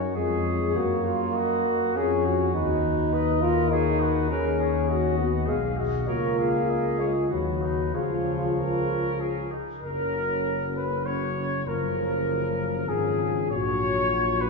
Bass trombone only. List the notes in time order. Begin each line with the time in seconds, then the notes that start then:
Already playing: F#2
0.16 F2
0.76 F#2
1.96 F2
2.54 D#2
4.31 D#2
5.48 B1
6.08 C#2
7.30 D#2
7.94 C#2
9.83 F#1
11.66 F#1
12.87 G#1
13.51 A#1